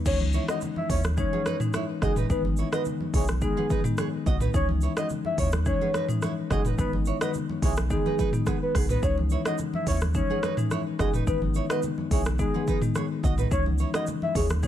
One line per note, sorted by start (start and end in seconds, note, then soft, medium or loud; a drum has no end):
0.06 0.39 C#2 loud
0.06 0.27 E3 medium
0.06 0.27 G#3 medium
0.06 0.27 C#4 medium
0.06 0.27 D#4 loud
0.06 0.19 C#5 loud
0.06 kick loud
0.06 crash loud
0.06 shaker medium
0.21 high conga medium
0.33 0.43 E4 medium
0.33 0.43 C#5 medium
0.33 shaker medium
0.48 0.69 E3 medium
0.48 0.69 G#3 medium
0.48 0.69 C#4 medium
0.48 0.69 D#4 medium
0.48 0.57 F#4 medium
0.48 0.57 D#5 medium
0.48 0.60 D#5 medium
0.48 cross-stick loud
0.48 high conga soft
0.48 shaker medium
0.61 low conga medium
0.61 shaker medium
0.76 0.88 E5 medium
0.76 high conga medium
0.90 1.23 D#2 medium
0.90 0.99 E4 medium
0.90 0.99 C#5 medium
0.90 1.03 C#5 medium
0.90 kick loud
0.90 open hi-hat medium
0.90 low conga medium
0.90 shaker medium
1.03 cross-stick loud
1.03 high conga medium
1.03 shaker medium
1.17 1.57 E3 medium
1.17 1.57 G#3 medium
1.17 1.57 C#4 medium
1.17 1.57 D#4 loud
1.17 1.58 C#5 loud
1.17 kick medium
1.17 shaker medium
1.33 1.41 B3 medium
1.33 1.41 G#4 medium
1.33 high conga medium
1.46 1.56 D#4 medium
1.46 1.55 B4 medium
1.46 cross-stick loud
1.46 high conga medium
1.46 shaker medium
1.60 1.81 E3 medium
1.60 1.81 G#3 medium
1.60 1.81 C#4 medium
1.60 1.81 D#4 medium
1.60 mid tom loud
1.60 shaker medium
1.73 1.84 E4 medium
1.73 1.83 C#5 medium
1.73 cross-stick loud
1.73 high conga medium
1.73 shaker medium
2.01 2.24 F#1 medium
2.01 2.23 E3 medium
2.01 2.23 G#3 medium
2.01 2.23 C#4 medium
2.01 2.23 D#4 medium
2.01 2.12 F#4 medium
2.01 2.15 G#4 medium
2.01 2.11 D#5 medium
2.01 kick medium
2.01 cross-stick medium
2.01 low conga medium
2.01 shaker medium
2.16 2.26 D#4 medium
2.16 2.25 B4 medium
2.16 mid tom loud
2.16 shaker medium
2.30 2.63 G#1 loud
2.30 2.51 D#3 medium
2.30 2.51 G#3 medium
2.30 2.51 B3 medium
2.30 2.51 D#4 loud
2.30 2.43 B4 loud
2.30 kick loud
2.30 shaker medium
2.45 high conga medium
2.57 2.68 E4 medium
2.57 2.67 C#5 medium
2.57 shaker medium
2.72 2.93 D#3 medium
2.72 2.93 G#3 medium
2.72 2.93 B3 medium
2.72 2.93 D#4 medium
2.72 2.82 F#4 medium
2.72 2.85 B4 medium
2.72 2.81 D#5 medium
2.72 cross-stick loud
2.72 high conga soft
2.72 shaker medium
2.85 low conga medium
2.85 shaker medium
3.01 high conga medium
3.14 3.47 B1 medium
3.14 3.24 E4 medium
3.14 3.27 G#4 medium
3.14 3.23 C#5 medium
3.14 kick loud
3.14 open hi-hat medium
3.14 low conga medium
3.14 shaker medium
3.28 cross-stick medium
3.28 high conga medium
3.28 shaker medium
3.41 3.81 D#3 medium
3.41 3.81 G#3 medium
3.41 3.81 B3 medium
3.41 3.81 D#4 loud
3.41 3.83 G#4 loud
3.41 kick medium
3.41 shaker medium
3.57 3.66 B3 medium
3.57 3.65 G#4 medium
3.57 high conga medium
3.70 3.80 D#4 medium
3.70 3.79 B4 medium
3.70 kick loud
3.70 high conga medium
3.70 shaker medium
3.84 4.05 D#3 medium
3.84 4.05 G#3 medium
3.84 4.05 B3 medium
3.84 4.06 D#4 medium
3.84 mid tom loud
3.84 shaker medium
3.98 4.08 G#4 medium
3.98 4.07 C#5 medium
3.98 cross-stick loud
3.98 high conga medium
3.98 shaker medium
4.26 4.48 B1 loud
4.26 4.36 F#4 medium
4.26 4.35 D#5 medium
4.26 kick medium
4.26 low conga medium
4.26 shaker medium
4.40 4.50 D#4 medium
4.40 4.49 B4 medium
4.40 mid tom loud
4.40 shaker medium
4.54 4.87 C#2 loud
4.54 4.75 E3 medium
4.54 4.76 G#3 medium
4.54 4.76 C#4 medium
4.54 4.76 D#4 loud
4.54 4.67 C#5 loud
4.54 kick loud
4.54 shaker medium
4.69 high conga medium
4.81 4.92 E4 medium
4.81 4.91 C#5 medium
4.81 shaker medium
4.97 5.18 E3 medium
4.97 5.18 G#3 medium
4.97 5.18 C#4 medium
4.97 5.18 D#4 medium
4.97 5.06 F#4 medium
4.97 5.05 D#5 medium
4.97 5.09 D#5 medium
4.97 cross-stick loud
4.97 high conga soft
4.97 shaker medium
5.09 low conga medium
5.09 shaker medium
5.25 5.37 E5 medium
5.25 high conga medium
5.38 5.71 D#2 medium
5.38 5.48 E4 medium
5.38 5.47 C#5 medium
5.38 5.51 C#5 medium
5.38 kick loud
5.38 open hi-hat medium
5.38 low conga medium
5.38 shaker medium
5.52 cross-stick loud
5.52 high conga medium
5.52 shaker medium
5.66 6.05 E3 medium
5.66 6.05 G#3 medium
5.66 6.06 C#4 medium
5.66 6.06 D#4 loud
5.66 6.07 C#5 loud
5.66 kick medium
5.66 shaker medium
5.81 5.90 B3 medium
5.81 5.89 G#4 medium
5.81 high conga medium
5.94 6.04 D#4 medium
5.94 6.04 B4 medium
5.94 cross-stick loud
5.94 high conga medium
5.94 shaker medium
6.08 6.30 E3 medium
6.08 6.30 G#3 medium
6.08 6.30 C#4 medium
6.08 6.30 D#4 medium
6.08 mid tom loud
6.08 shaker medium
6.22 6.32 E4 medium
6.22 6.32 C#5 medium
6.22 cross-stick medium
6.22 high conga medium
6.22 shaker medium
6.50 6.72 F#1 loud
6.50 6.72 E3 medium
6.50 6.72 G#3 medium
6.50 6.72 C#4 medium
6.50 6.72 D#4 medium
6.50 6.60 F#4 medium
6.50 6.63 G#4 medium
6.50 6.60 D#5 medium
6.50 kick loud
6.50 cross-stick medium
6.50 low conga medium
6.50 shaker medium
6.65 6.74 D#4 medium
6.65 6.74 B4 medium
6.65 mid tom medium
6.65 shaker medium
6.78 7.12 G#1 loud
6.78 7.00 D#3 medium
6.78 7.00 G#3 medium
6.78 7.00 B3 medium
6.78 7.00 D#4 loud
6.78 6.91 B4 loud
6.78 kick loud
6.78 shaker medium
6.93 high conga medium
7.05 7.16 E4 medium
7.05 7.16 C#5 medium
7.05 shaker medium
7.21 7.42 D#3 medium
7.21 7.42 G#3 medium
7.21 7.42 B3 medium
7.21 7.42 D#4 medium
7.21 7.30 F#4 medium
7.21 7.33 B4 medium
7.21 7.30 D#5 medium
7.21 cross-stick loud
7.21 high conga soft
7.21 shaker medium
7.34 low conga medium
7.34 shaker medium
7.49 high conga medium
7.62 7.95 B1 medium
7.62 7.72 E4 medium
7.62 7.76 G#4 medium
7.62 7.72 C#5 medium
7.62 kick loud
7.62 open hi-hat medium
7.62 low conga medium
7.62 shaker medium
7.76 cross-stick loud
7.76 high conga medium
7.76 shaker medium
7.90 8.30 D#3 medium
7.90 8.30 G#3 medium
7.90 8.30 B3 medium
7.90 8.30 D#4 loud
7.90 8.31 G#4 loud
7.90 kick medium
7.90 shaker medium
8.06 8.14 D#4 medium
8.06 8.14 B4 medium
8.06 high conga medium
8.19 8.29 D#4 medium
8.19 8.28 B4 medium
8.19 kick loud
8.19 high conga medium
8.19 shaker medium
8.33 8.54 D#3 medium
8.33 8.54 G#3 medium
8.33 8.54 B3 medium
8.33 8.54 D#4 medium
8.33 mid tom loud
8.33 shaker medium
8.46 8.57 B3 medium
8.46 8.56 G#4 medium
8.46 kick medium
8.46 cross-stick medium
8.46 high conga medium
8.46 shaker medium
8.62 8.73 B4 medium
8.75 8.97 B1 medium
8.75 8.85 B3 medium
8.75 8.84 G#4 medium
8.75 kick medium
8.75 cross-stick medium
8.75 open hi-hat medium
8.75 low conga medium
8.75 shaker medium
8.89 8.99 D#4 medium
8.89 8.98 B4 medium
8.89 9.02 B4 medium
8.89 mid tom loud
8.89 shaker medium
9.02 9.36 C#2 loud
9.02 9.24 E3 medium
9.02 9.24 G#3 medium
9.02 9.24 C#4 medium
9.02 9.24 D#4 loud
9.02 9.16 C#5 loud
9.02 kick loud
9.02 shaker medium
9.18 high conga medium
9.30 9.41 E4 medium
9.30 9.40 C#5 medium
9.30 shaker medium
9.45 9.66 E3 medium
9.45 9.66 G#3 medium
9.45 9.66 C#4 medium
9.45 9.66 D#4 medium
9.45 9.55 F#4 medium
9.45 9.54 D#5 medium
9.45 9.58 D#5 medium
9.45 cross-stick loud
9.45 high conga soft
9.45 shaker medium
9.58 low conga medium
9.58 shaker medium
9.73 9.86 E5 medium
9.73 high conga medium
9.87 10.20 D#2 medium
9.87 9.97 E4 medium
9.87 9.96 C#5 medium
9.87 10.00 C#5 medium
9.87 kick loud
9.87 open hi-hat medium
9.87 low conga medium
9.87 shaker medium
10.01 cross-stick medium
10.01 high conga medium
10.01 shaker medium
10.14 10.54 E3 medium
10.14 10.54 G#3 medium
10.14 10.54 C#4 medium
10.14 10.54 D#4 loud
10.14 10.56 C#5 loud
10.14 kick medium
10.14 shaker medium
10.30 10.39 B3 medium
10.30 10.38 G#4 medium
10.30 high conga medium
10.43 10.53 D#4 medium
10.43 10.52 B4 medium
10.43 cross-stick loud
10.43 high conga medium
10.43 shaker medium
10.57 10.78 E3 medium
10.57 10.78 G#3 medium
10.57 10.78 C#4 medium
10.57 10.79 D#4 medium
10.57 mid tom loud
10.57 shaker medium
10.71 10.81 E4 medium
10.71 10.80 C#5 medium
10.71 cross-stick medium
10.71 high conga medium
10.71 shaker medium
10.99 11.21 F#1 medium
10.99 11.20 E3 medium
10.99 11.20 G#3 medium
10.99 11.21 C#4 medium
10.99 11.21 D#4 medium
10.99 11.09 F#4 medium
10.99 11.12 G#4 medium
10.99 11.08 D#5 medium
10.99 kick medium
10.99 cross-stick medium
10.99 low conga medium
10.99 shaker medium
11.14 11.23 D#4 medium
11.14 11.22 B4 medium
11.14 mid tom loud
11.14 shaker medium
11.27 11.60 G#1 loud
11.27 11.48 D#3 medium
11.27 11.48 G#3 medium
11.27 11.48 B3 medium
11.27 11.49 D#4 loud
11.27 11.40 B4 loud
11.27 kick loud
11.27 shaker medium
11.42 high conga medium
11.54 11.65 E4 medium
11.54 11.64 C#5 medium
11.54 shaker medium
11.69 11.90 D#3 medium
11.69 11.91 G#3 medium
11.69 11.91 B3 medium
11.69 11.91 D#4 medium
11.69 11.79 F#4 medium
11.69 11.82 B4 medium
11.69 11.78 D#5 medium
11.69 cross-stick loud
11.69 high conga soft
11.69 shaker medium
11.83 low conga medium
11.83 shaker medium
11.98 high conga medium
12.11 12.44 B1 medium
12.11 12.21 E4 medium
12.11 12.24 G#4 medium
12.11 12.21 C#5 medium
12.11 kick loud
12.11 open hi-hat medium
12.11 low conga medium
12.11 shaker medium
12.25 cross-stick loud
12.25 high conga medium
12.25 shaker medium
12.39 12.78 D#3 medium
12.39 12.78 G#3 medium
12.39 12.78 B3 medium
12.39 12.79 D#4 loud
12.39 12.80 G#4 loud
12.39 kick medium
12.39 shaker medium
12.54 12.63 B3 medium
12.54 12.62 G#4 medium
12.54 high conga medium
12.67 12.77 D#4 medium
12.67 12.77 B4 medium
12.67 kick medium
12.67 high conga medium
12.67 shaker medium
12.81 13.03 D#3 medium
12.81 13.03 G#3 medium
12.81 13.03 B3 medium
12.81 13.03 D#4 medium
12.81 mid tom loud
12.81 shaker medium
12.95 13.05 G#4 medium
12.95 13.05 C#5 medium
12.95 cross-stick medium
12.95 high conga medium
12.95 shaker medium
13.23 13.45 B1 loud
13.23 13.33 F#4 medium
13.23 13.33 D#5 medium
13.23 kick medium
13.23 low conga medium
13.23 shaker medium
13.38 13.47 D#4 medium
13.38 13.47 B4 medium
13.38 mid tom loud
13.38 shaker medium
13.51 13.84 C#2 loud
13.51 13.72 E3 medium
13.51 13.73 G#3 medium
13.51 13.73 C#4 medium
13.51 13.73 D#4 loud
13.51 13.64 C#5 loud
13.51 kick loud
13.51 shaker medium
13.66 high conga medium
13.78 13.89 E4 medium
13.78 13.89 C#5 medium
13.78 shaker medium
13.93 14.15 E3 medium
13.93 14.15 G#3 medium
13.93 14.15 C#4 medium
13.93 14.15 D#4 medium
13.93 14.03 F#4 medium
13.93 14.03 D#5 medium
13.93 14.06 D#5 medium
13.93 cross-stick loud
13.93 high conga soft
13.93 shaker medium
14.07 low conga medium
14.07 shaker medium
14.22 14.34 E5 medium
14.22 high conga medium
14.35 14.67 D#2 medium
14.35 14.45 E4 medium
14.35 14.48 G#4 medium
14.35 14.45 C#5 medium
14.35 kick loud
14.35 open hi-hat medium
14.35 low conga medium
14.35 shaker medium
14.49 cross-stick loud
14.49 high conga medium
14.49 shaker medium
14.63 14.67 E3 loud
14.63 14.67 G#3 medium
14.63 14.67 C#4 medium
14.63 14.67 D#4 loud
14.63 14.67 C#5 loud
14.63 kick medium
14.63 shaker medium